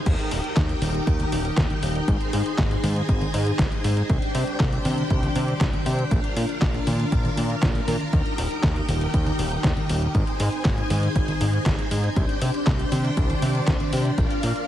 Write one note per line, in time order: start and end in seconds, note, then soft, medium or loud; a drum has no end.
0.06 0.15 D#2 loud
0.06 4.06 D#4 medium
0.06 2.06 G4 medium
0.06 2.06 A#4 medium
0.06 2.06 G5 medium
0.06 kick loud
0.06 closed hi-hat medium
0.06 crash loud
0.19 closed hi-hat soft
0.31 0.41 D#1 loud
0.31 open hi-hat loud
0.44 closed hi-hat soft
0.57 0.75 D#2 medium
0.57 kick loud
0.57 snare loud
0.57 clap medium
0.57 closed hi-hat medium
0.69 closed hi-hat soft
0.82 1.00 D#1 loud
0.82 open hi-hat loud
0.82 high conga medium
0.94 closed hi-hat soft
1.07 1.25 D#2 medium
1.07 kick loud
1.07 closed hi-hat medium
1.20 closed hi-hat soft
1.20 high conga medium
1.32 1.50 D#1 medium
1.32 open hi-hat loud
1.32 high conga medium
1.45 closed hi-hat soft
1.57 1.67 D#2 medium
1.57 kick loud
1.57 snare loud
1.57 clap loud
1.57 closed hi-hat medium
1.70 closed hi-hat soft
1.70 high conga medium
1.83 2.01 D#1 medium
1.83 open hi-hat loud
1.95 closed hi-hat soft
2.08 2.17 G#1 loud
2.08 4.08 G#4 medium
2.08 6.07 C5 medium
2.08 4.08 G#5 medium
2.08 kick loud
2.08 closed hi-hat medium
2.21 closed hi-hat soft
2.33 2.42 G#2 loud
2.33 open hi-hat loud
2.46 closed hi-hat soft
2.58 2.76 G#1 medium
2.58 kick loud
2.58 snare loud
2.58 clap loud
2.58 closed hi-hat medium
2.71 closed hi-hat soft
2.84 3.02 G#2 loud
2.84 open hi-hat loud
2.84 high conga medium
2.96 closed hi-hat soft
3.09 3.27 G#1 medium
3.09 kick loud
3.09 closed hi-hat medium
3.21 closed hi-hat soft
3.21 high conga medium
3.34 3.52 G#2 medium
3.34 open hi-hat loud
3.47 closed hi-hat soft
3.59 3.68 G#1 medium
3.59 kick loud
3.59 snare loud
3.59 clap medium
3.59 closed hi-hat medium
3.72 closed hi-hat soft
3.84 4.02 G#2 medium
3.84 open hi-hat loud
3.97 closed hi-hat soft
4.09 4.19 C2 loud
4.09 6.09 D4 medium
4.09 6.09 G4 medium
4.09 6.09 G5 medium
4.09 kick loud
4.09 closed hi-hat medium
4.22 closed hi-hat soft
4.35 4.44 C3 medium
4.35 open hi-hat loud
4.47 closed hi-hat soft
4.60 4.78 C2 medium
4.60 kick loud
4.60 snare loud
4.60 clap medium
4.60 closed hi-hat medium
4.73 closed hi-hat soft
4.85 5.03 C3 loud
4.85 open hi-hat loud
4.85 high conga medium
4.98 closed hi-hat soft
5.10 5.28 C2 medium
5.10 kick loud
5.10 closed hi-hat medium
5.23 closed hi-hat soft
5.23 high conga medium
5.36 5.54 C3 medium
5.36 open hi-hat loud
5.36 high conga medium
5.48 closed hi-hat soft
5.61 5.70 C2 medium
5.61 kick loud
5.61 snare loud
5.61 clap medium
5.61 closed hi-hat medium
5.74 closed hi-hat soft
5.74 high conga medium
5.86 6.04 C3 medium
5.86 open hi-hat loud
5.99 closed hi-hat soft
6.11 6.20 A#1 loud
6.11 8.11 D4 medium
6.11 8.11 F4 medium
6.11 10.11 A#4 medium
6.11 8.11 F5 medium
6.11 kick loud
6.11 closed hi-hat medium
6.24 closed hi-hat soft
6.37 6.46 A#2 loud
6.37 open hi-hat loud
6.49 closed hi-hat soft
6.62 6.80 A#1 medium
6.62 kick loud
6.62 snare loud
6.62 clap medium
6.62 closed hi-hat medium
6.74 closed hi-hat soft
6.87 7.05 A#2 loud
6.87 open hi-hat loud
6.87 high conga medium
7.00 closed hi-hat soft
7.12 7.30 A#1 medium
7.12 kick loud
7.12 closed hi-hat medium
7.25 closed hi-hat soft
7.25 high conga medium
7.37 7.55 A#2 medium
7.37 open hi-hat loud
7.50 closed hi-hat soft
7.63 7.81 A#1 medium
7.63 kick loud
7.63 snare loud
7.63 clap medium
7.63 closed hi-hat medium
7.75 closed hi-hat soft
7.88 7.97 A#2 medium
7.88 open hi-hat loud
7.88 high conga medium
8.00 closed hi-hat soft
8.13 8.22 D#2 loud
8.13 10.13 D#4 medium
8.13 10.13 G4 medium
8.13 10.13 G5 medium
8.13 kick loud
8.13 closed hi-hat medium
8.26 closed hi-hat soft
8.38 8.47 D#1 loud
8.38 open hi-hat loud
8.51 closed hi-hat soft
8.63 8.81 D#2 medium
8.63 kick loud
8.63 snare loud
8.63 clap medium
8.63 closed hi-hat medium
8.76 closed hi-hat soft
8.89 9.07 D#1 loud
8.89 open hi-hat loud
8.89 high conga medium
9.01 closed hi-hat soft
9.14 9.32 D#2 medium
9.14 kick loud
9.14 closed hi-hat medium
9.26 closed hi-hat soft
9.26 high conga medium
9.39 9.57 D#1 medium
9.39 open hi-hat loud
9.39 high conga medium
9.52 closed hi-hat soft
9.64 9.73 D#2 medium
9.64 kick loud
9.64 snare loud
9.64 clap medium
9.64 closed hi-hat medium
9.77 closed hi-hat soft
9.77 high conga medium
9.89 10.08 D#1 medium
9.89 open hi-hat loud
10.02 closed hi-hat soft
10.15 10.24 G#1 loud
10.15 12.14 D#4 medium
10.15 12.14 G#4 medium
10.15 12.14 C5 medium
10.15 12.14 G#5 medium
10.15 kick loud
10.15 closed hi-hat medium
10.27 closed hi-hat soft
10.40 10.49 G#2 medium
10.40 open hi-hat loud
10.52 closed hi-hat soft
10.65 10.83 G#1 medium
10.65 kick loud
10.65 snare loud
10.65 clap medium
10.65 closed hi-hat medium
10.78 closed hi-hat soft
10.90 11.08 G#2 loud
10.90 open hi-hat loud
10.90 high conga medium
11.03 closed hi-hat soft
11.16 11.34 G#1 medium
11.16 kick loud
11.16 closed hi-hat medium
11.28 closed hi-hat soft
11.28 high conga medium
11.41 11.59 G#2 medium
11.41 open hi-hat loud
11.53 closed hi-hat soft
11.66 11.75 G#1 medium
11.66 kick loud
11.66 snare loud
11.66 clap medium
11.66 closed hi-hat medium
11.79 closed hi-hat soft
11.91 12.09 G#2 medium
11.91 open hi-hat loud
12.04 closed hi-hat soft
12.16 12.25 C2 loud
12.16 14.67 D4 medium
12.16 14.16 G4 medium
12.16 14.16 C5 medium
12.16 14.16 G5 medium
12.16 kick loud
12.16 closed hi-hat medium
12.29 closed hi-hat soft
12.42 12.51 C3 medium
12.42 open hi-hat loud
12.54 closed hi-hat soft
12.67 12.85 C2 medium
12.67 kick loud
12.67 snare loud
12.67 clap medium
12.67 closed hi-hat medium
12.79 closed hi-hat soft
12.92 13.10 C3 loud
12.92 open hi-hat loud
12.92 high conga medium
13.05 closed hi-hat soft
13.17 13.35 C2 medium
13.17 kick loud
13.17 closed hi-hat medium
13.30 closed hi-hat soft
13.30 high conga medium
13.42 13.60 C3 medium
13.42 open hi-hat loud
13.42 high conga medium
13.55 closed hi-hat soft
13.67 13.77 C2 medium
13.67 kick loud
13.67 snare loud
13.67 clap medium
13.67 closed hi-hat medium
13.80 closed hi-hat soft
13.80 high conga medium
13.93 14.11 C3 medium
13.93 open hi-hat loud
14.05 closed hi-hat soft
14.18 14.27 A#1 loud
14.18 14.67 F4 medium
14.18 14.67 A#4 medium
14.18 14.67 F5 medium
14.18 kick loud
14.18 closed hi-hat medium
14.31 closed hi-hat soft
14.43 14.52 A#2 loud
14.43 open hi-hat loud
14.56 closed hi-hat soft